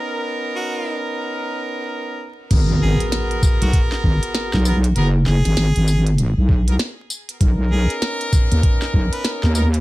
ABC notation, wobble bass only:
X:1
M:4/4
L:1/16
Q:"Swing 16ths" 1/4=98
K:G#m
V:1 name="Wobble bass" clef=bass
z16 | G,,,3 z4 B,,, z2 G,,, z2 B,,,3 | F,,,2 F,,, G,,, G,,, G,,,4 B,,,3 z4 | B,,,3 z4 D,, z2 B,,, z2 D,,3 |]